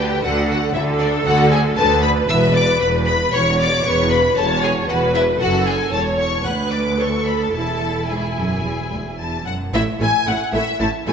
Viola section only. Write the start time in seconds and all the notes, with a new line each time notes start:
Already playing: B4
0.23 A4
0.75 A4
1.78 B4
3.34 C#5
3.86 B4
4.37 C#5
4.89 B4
5.40 A4
5.93 C#5
6.46 B4
6.99 A4
7.54 E4
9.74 A3 E4
10.01 A3 E4
10.27 A3 E4
10.53 A3 E4
10.80 A3 E4
11.07 A3 E4